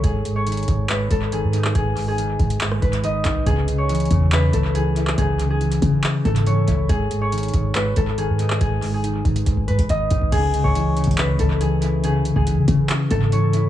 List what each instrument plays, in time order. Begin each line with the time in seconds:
Already playing: harp C#5
0.04 808-style bass G#1, clean electric guitar G#2, harp G#4, kick, closed hi-hat
0.25 clean electric guitar G#2, closed hi-hat
0.36 harp C#5
0.47 clean electric guitar D#3, closed hi-hat
0.52 closed hi-hat
0.57 closed hi-hat
0.63 closed hi-hat
0.68 808-style bass G#1, clean electric guitar G#2, kick, closed hi-hat
0.89 clean electric guitar G#2, harp B4, clap, closed hi-hat
1.11 808-style bass G#1, clean electric guitar G#2, harp A4, kick, closed hi-hat
1.32 clean electric guitar D#3, harp G#4, closed hi-hat
1.43 808-style bass G#2
1.53 clean electric guitar D#4, closed hi-hat
1.65 clap
1.75 808-style bass G#1, clean electric guitar G#2, harp G#4, kick, closed hi-hat
1.97 clean electric guitar G#2, open hi-hat
2.08 harp G#4
2.18 clean electric guitar D#3, closed hi-hat
2.39 808-style bass G#1, clean electric guitar G#2, kick, closed hi-hat
2.50 closed hi-hat
2.61 clean electric guitar G#2, clap, closed hi-hat
2.72 cross-stick
2.82 808-style bass G#1, clean electric guitar G#2, harp B4, kick, closed hi-hat
2.93 closed hi-hat
3.03 clean electric guitar D#3, harp D#5, closed hi-hat
3.25 808-style bass B1, clean electric guitar D#4, kick, clap, closed hi-hat
3.46 808-style bass C#2, clean electric guitar C#3, harp G#4, kick, closed hi-hat
3.68 clean electric guitar C#3, closed hi-hat
3.78 harp C#5
3.89 clean electric guitar E3, closed hi-hat
3.95 closed hi-hat
4.00 closed hi-hat
4.05 closed hi-hat
4.11 808-style bass E2, clean electric guitar C#3, kick, closed hi-hat
4.32 clean electric guitar C#3, harp B4, clap, closed hi-hat
4.53 808-style bass C#2, clean electric guitar C#3, harp A4, kick, closed hi-hat
4.75 clean electric guitar E3, harp G#4, closed hi-hat
4.96 clean electric guitar E4, closed hi-hat
5.07 clap
5.18 808-style bass C#2, clean electric guitar C#3, harp G#4, kick, closed hi-hat
5.39 clean electric guitar C#3, closed hi-hat
5.50 harp G#4
5.61 clean electric guitar E3, closed hi-hat
5.72 closed hi-hat
5.82 808-style bass C#3, clean electric guitar C#3, kick, closed hi-hat
6.03 clean electric guitar C#3, clap, closed hi-hat
6.25 808-style bass G#2, clean electric guitar C#3, harp A4, kick, closed hi-hat
6.36 closed hi-hat
6.46 clean electric guitar E3, harp C#5, closed hi-hat
6.68 808-style bass C#2, clean electric guitar E4, kick, closed hi-hat
6.89 808-style bass G#1, clean electric guitar G#2, harp G#4, kick, closed hi-hat
7.11 clean electric guitar G#2, closed hi-hat
7.21 harp C#5
7.32 clean electric guitar D#3, closed hi-hat
7.38 closed hi-hat
7.43 closed hi-hat
7.48 closed hi-hat
7.54 808-style bass G#1, clean electric guitar G#2, kick, closed hi-hat
7.75 clean electric guitar G#2, harp B4, clap, closed hi-hat
7.96 808-style bass G#1, clean electric guitar G#2, harp A4, kick, closed hi-hat
8.18 clean electric guitar D#3, harp G#4, closed hi-hat
8.29 808-style bass G#2
8.39 clean electric guitar D#4, closed hi-hat
8.50 clap
8.61 808-style bass G#1, clean electric guitar G#2, harp G#4, kick, closed hi-hat
8.82 clean electric guitar G#2, open hi-hat
8.94 harp G#4
9.04 clean electric guitar D#3, closed hi-hat
9.25 808-style bass G#1, clean electric guitar G#2, kick, closed hi-hat
9.36 closed hi-hat
9.46 808-style bass G#1, clean electric guitar G#2, kick, closed hi-hat
9.57 kick
9.68 clean electric guitar G#2, 808-style bass G#2, harp B4, closed hi-hat
9.79 808-style bass G#1, kick, closed hi-hat
9.89 clean electric guitar D#3, harp D#5, kick, closed hi-hat
10.10 808-style bass B1, clean electric guitar D#4, kick, closed hi-hat
10.22 kick
10.32 808-style bass C#2, clean electric guitar C#3, harp G#4, kick, closed hi-hat, crash
10.54 clean electric guitar C#3, closed hi-hat
10.64 808-style bass C#2, harp C#5, kick
10.75 clean electric guitar E3, closed hi-hat
10.97 clean electric guitar C#3, closed hi-hat
11.04 808-style bass C#2, kick, closed hi-hat
11.11 closed hi-hat
11.18 clean electric guitar C#3, harp B4, clap, closed hi-hat
11.39 808-style bass C#2, clean electric guitar C#3, harp A4, kick, closed hi-hat
11.61 clean electric guitar E3, harp G#4, closed hi-hat
11.82 clean electric guitar E4, closed hi-hat
12.04 clean electric guitar C#3, harp G#4, closed hi-hat
12.25 clean electric guitar C#3, closed hi-hat
12.36 808-style bass C#2, harp G#4, kick
12.47 clean electric guitar E3, closed hi-hat
12.57 808-style bass C#3
12.68 808-style bass C#3, clean electric guitar C#3, kick, closed hi-hat
12.89 clean electric guitar C#3, clap, closed hi-hat
13.11 808-style bass G#2, clean electric guitar C#3, harp A4, kick, closed hi-hat
13.32 clean electric guitar E3, harp C#5, closed hi-hat
13.53 clean electric guitar E4, closed hi-hat